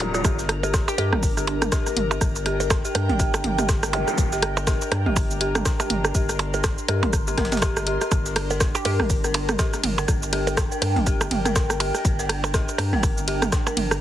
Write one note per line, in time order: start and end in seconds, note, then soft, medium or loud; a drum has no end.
0.00 0.22 D1 loud
0.00 14.01 D4 medium
0.00 14.01 A#4 medium
0.00 1.33 A#5 medium
0.00 closed hi-hat medium
0.00 closed hi-hat loud
0.00 zap medium
0.14 0.19 F4 loud
0.14 cross-stick soft
0.14 closed hi-hat soft
0.14 shaker soft
0.24 0.84 G1 loud
0.24 0.31 G4 medium
0.24 kick loud
0.24 cross-stick soft
0.24 closed hi-hat medium
0.24 percussion blips medium
0.24 shaker medium
0.39 snare medium
0.39 shaker soft
0.49 cross-stick medium
0.49 closed hi-hat medium
0.63 0.70 G4 medium
0.63 percussion blips medium
0.63 shaker soft
0.74 kick loud
0.74 cross-stick soft
0.74 cross-stick medium
0.74 snare loud
0.74 closed hi-hat medium
0.74 shaker medium
0.88 0.95 G4 medium
0.88 percussion blips medium
0.88 shaker soft
0.98 1.14 G2 medium
0.98 1.07 G4 medium
0.98 1.05 G4 medium
0.98 closed hi-hat medium
0.98 percussion blips medium
1.13 1.69 G1 medium
1.13 cross-stick medium
1.13 mid tom medium
1.23 kick loud
1.23 open hi-hat medium
1.23 shaker medium
1.30 5.26 G5 medium
1.37 1.44 G4 medium
1.37 cross-stick soft
1.37 shaker soft
1.47 closed hi-hat medium
1.47 percussion blips medium
1.62 cross-stick medium
1.62 closed hi-hat soft
1.62 mid tom medium
1.62 shaker soft
1.72 1.79 G4 medium
1.72 kick loud
1.72 cross-stick medium
1.72 snare loud
1.72 closed hi-hat medium
1.72 shaker medium
1.86 cross-stick soft
1.86 snare soft
1.86 shaker soft
1.96 2.18 G1 loud
1.96 closed hi-hat medium
1.96 mid tom medium
2.11 2.18 G4 medium
2.11 percussion blips medium
2.11 shaker soft
2.21 2.81 G1 loud
2.21 kick loud
2.21 cross-stick medium
2.21 closed hi-hat medium
2.21 shaker medium
2.36 shaker soft
2.46 2.52 G4 medium
2.46 cross-stick soft
2.46 closed hi-hat medium
2.60 closed hi-hat soft
2.60 percussion blips medium
2.60 shaker soft
2.70 kick loud
2.70 cross-stick medium
2.70 snare loud
2.70 closed hi-hat medium
2.70 percussion blips medium
2.70 shaker medium
2.85 2.92 G4 medium
2.85 shaker soft
2.95 3.11 G2 medium
2.95 cross-stick soft
2.95 closed hi-hat medium
2.95 percussion blips medium
3.09 3.42 G1 medium
3.09 closed hi-hat soft
3.09 mid tom medium
3.20 3.26 G4 medium
3.20 kick loud
3.20 closed hi-hat medium
3.20 shaker medium
3.34 cross-stick medium
3.34 percussion blips medium
3.34 shaker soft
3.44 4.04 G1 medium
3.44 closed hi-hat medium
3.44 mid tom medium
3.58 3.66 G4 medium
3.58 cross-stick soft
3.58 closed hi-hat soft
3.58 mid tom medium
3.58 shaker soft
3.69 kick loud
3.69 cross-stick medium
3.69 snare loud
3.69 closed hi-hat medium
3.69 shaker medium
3.83 cross-stick medium
3.83 snare medium
3.83 shaker soft
3.93 4.00 G4 medium
3.93 closed hi-hat medium
3.93 zap medium
3.93 percussion blips medium
4.08 cross-stick soft
4.08 closed hi-hat soft
4.08 shaker soft
4.18 4.78 G1 loud
4.18 kick loud
4.18 closed hi-hat medium
4.18 shaker medium
4.32 4.39 G4 medium
4.32 snare medium
4.32 shaker soft
4.42 cross-stick medium
4.42 closed hi-hat medium
4.57 percussion blips medium
4.57 shaker soft
4.67 4.74 G4 medium
4.67 kick loud
4.67 cross-stick medium
4.67 cross-stick soft
4.67 snare loud
4.67 closed hi-hat medium
4.67 shaker medium
4.81 shaker soft
4.92 5.08 G2 medium
4.92 cross-stick medium
4.92 closed hi-hat medium
4.92 percussion blips medium
5.06 5.63 G1 loud
5.06 5.13 G4 medium
5.06 mid tom medium
5.16 kick loud
5.16 cross-stick soft
5.16 open hi-hat medium
5.16 percussion blips medium
5.16 shaker medium
5.23 9.20 C6 medium
5.31 shaker soft
5.41 5.47 G4 medium
5.41 closed hi-hat medium
5.55 cross-stick medium
5.55 closed hi-hat soft
5.55 mid tom medium
5.55 shaker soft
5.65 kick loud
5.65 cross-stick medium
5.65 snare loud
5.65 closed hi-hat medium
5.65 shaker medium
5.80 5.87 G4 medium
5.80 cross-stick soft
5.80 snare soft
5.80 percussion blips medium
5.80 shaker soft
5.90 6.12 G1 loud
5.90 closed hi-hat medium
5.90 mid tom medium
6.04 cross-stick medium
6.04 shaker soft
6.15 6.75 G1 loud
6.15 6.21 G4 medium
6.15 kick loud
6.15 closed hi-hat medium
6.15 shaker medium
6.29 cross-stick soft
6.29 shaker soft
6.39 closed hi-hat medium
6.39 percussion blips medium
6.54 6.61 G4 medium
6.54 closed hi-hat soft
6.54 percussion blips medium
6.54 shaker soft
6.64 kick loud
6.64 cross-stick medium
6.64 snare loud
6.64 closed hi-hat medium
6.64 shaker medium
6.78 shaker soft
6.88 7.05 G2 medium
6.88 6.95 G4 medium
6.88 cross-stick soft
6.88 closed hi-hat medium
6.88 percussion blips medium
7.03 7.35 G1 medium
7.03 closed hi-hat soft
7.03 mid tom medium
7.03 percussion blips medium
7.13 kick loud
7.13 cross-stick medium
7.13 closed hi-hat medium
7.13 shaker medium
7.27 7.34 G4 medium
7.27 shaker soft
7.38 7.98 G1 loud
7.38 7.42 A#4 medium
7.38 kick medium
7.38 cross-stick soft
7.38 snare medium
7.38 closed hi-hat medium
7.38 mid tom medium
7.45 snare medium
7.45 closed hi-hat medium
7.52 7.57 G4 medium
7.52 snare medium
7.52 closed hi-hat soft
7.52 closed hi-hat medium
7.52 mid tom loud
7.52 shaker soft
7.57 snare medium
7.57 closed hi-hat medium
7.62 7.66 G4 loud
7.62 kick loud
7.62 cross-stick medium
7.62 snare loud
7.62 closed hi-hat medium
7.62 percussion blips medium
7.62 shaker medium
7.76 cross-stick medium
7.76 snare medium
7.76 shaker soft
7.87 7.97 G4 medium
7.87 closed hi-hat medium
8.01 8.08 G4 medium
8.01 cross-stick soft
8.01 closed hi-hat soft
8.01 shaker soft
8.11 8.71 G1 loud
8.11 8.18 G4 medium
8.11 kick loud
8.11 cross-stick soft
8.11 closed hi-hat medium
8.11 percussion blips medium
8.11 shaker medium
8.26 snare medium
8.26 shaker soft
8.36 cross-stick medium
8.36 closed hi-hat medium
8.36 ride medium
8.50 8.53 A#4 medium
8.50 percussion blips medium
8.50 shaker soft
8.60 kick loud
8.60 cross-stick medium
8.60 cross-stick soft
8.60 snare loud
8.60 closed hi-hat medium
8.60 shaker medium
8.75 8.81 G4 medium
8.75 percussion blips medium
8.75 shaker soft
8.85 9.01 G2 medium
8.85 8.94 G4 medium
8.85 8.92 G4 medium
8.85 closed hi-hat medium
8.85 ride medium
8.85 percussion blips medium
9.00 9.56 G1 loud
9.00 cross-stick medium
9.00 mid tom loud
9.10 kick loud
9.10 open hi-hat medium
9.10 shaker medium
9.17 13.13 G5 medium
9.24 9.27 A#4 medium
9.24 cross-stick soft
9.24 shaker soft
9.34 closed hi-hat medium
9.34 ride medium
9.34 percussion blips medium
9.49 cross-stick medium
9.49 closed hi-hat soft
9.49 mid tom loud
9.49 shaker soft
9.59 9.66 G4 medium
9.59 kick loud
9.59 cross-stick loud
9.59 snare loud
9.59 closed hi-hat medium
9.59 shaker medium
9.73 cross-stick soft
9.73 snare soft
9.73 shaker soft
9.84 10.05 G1 loud
9.84 closed hi-hat loud
9.84 closed hi-hat medium
9.84 mid tom medium
9.84 ride medium
9.98 10.01 A#4 medium
9.98 percussion blips medium
9.98 shaker soft
10.08 10.68 G1 loud
10.08 kick loud
10.08 cross-stick medium
10.08 closed hi-hat medium
10.08 shaker medium
10.23 shaker soft
10.33 10.39 G4 medium
10.33 cross-stick soft
10.33 closed hi-hat loud
10.33 closed hi-hat medium
10.33 ride medium
10.47 closed hi-hat soft
10.47 percussion blips medium
10.47 shaker soft
10.57 kick loud
10.57 cross-stick medium
10.57 cross-stick loud
10.57 snare loud
10.57 closed hi-hat medium
10.57 percussion blips medium
10.57 shaker medium
10.72 10.74 A#4 medium
10.72 shaker soft
10.82 10.98 G2 medium
10.82 cross-stick soft
10.82 closed hi-hat medium
10.82 ride medium
10.82 percussion blips medium
10.96 11.28 G1 loud
10.96 closed hi-hat soft
10.96 mid tom loud
11.06 11.13 G4 medium
11.06 kick loud
11.06 closed hi-hat medium
11.06 shaker medium
11.21 cross-stick medium
11.21 percussion blips medium
11.21 shaker soft
11.31 11.91 G1 loud
11.31 closed hi-hat loud
11.31 closed hi-hat medium
11.31 mid tom medium
11.31 ride medium
11.45 11.48 A#4 medium
11.45 cross-stick soft
11.45 closed hi-hat soft
11.45 mid tom loud
11.45 shaker soft
11.56 kick loud
11.56 cross-stick loud
11.56 snare loud
11.56 closed hi-hat medium
11.56 shaker medium
11.70 cross-stick medium
11.70 snare medium
11.70 shaker soft
11.80 11.87 G4 medium
11.80 closed hi-hat loud
11.80 closed hi-hat medium
11.80 ride medium
11.80 percussion blips medium
11.95 cross-stick soft
11.95 closed hi-hat soft
11.95 shaker soft
12.05 12.65 G1 loud
12.05 kick loud
12.05 closed hi-hat medium
12.05 shaker medium
12.19 12.22 A#4 medium
12.19 snare medium
12.19 shaker soft
12.29 cross-stick medium
12.29 closed hi-hat medium
12.29 closed hi-hat loud
12.29 ride medium
12.44 percussion blips medium
12.44 shaker soft
12.54 12.60 G4 medium
12.54 kick loud
12.54 cross-stick soft
12.54 cross-stick medium
12.54 snare loud
12.54 closed hi-hat medium
12.54 shaker medium
12.69 shaker soft
12.78 12.94 G2 loud
12.78 cross-stick medium
12.78 closed hi-hat medium
12.78 closed hi-hat loud
12.78 ride medium
12.78 percussion blips medium
12.93 13.50 G1 medium
12.93 12.96 A#4 medium
12.93 mid tom loud
13.03 kick loud
13.03 cross-stick soft
13.03 open hi-hat medium
13.03 percussion blips medium
13.03 shaker medium
13.10 14.01 A#5 medium
13.18 shaker soft
13.28 13.34 G4 medium
13.28 closed hi-hat loud
13.28 closed hi-hat medium
13.28 ride medium
13.42 cross-stick medium
13.42 closed hi-hat soft
13.42 mid tom loud
13.42 shaker soft
13.52 kick loud
13.52 cross-stick medium
13.52 snare loud
13.52 closed hi-hat medium
13.52 shaker medium
13.67 13.70 A#4 medium
13.67 cross-stick soft
13.67 snare soft
13.67 percussion blips medium
13.67 shaker soft
13.77 13.98 G1 loud
13.77 closed hi-hat loud
13.77 closed hi-hat medium
13.77 mid tom medium
13.77 ride medium
13.91 cross-stick medium
13.91 shaker soft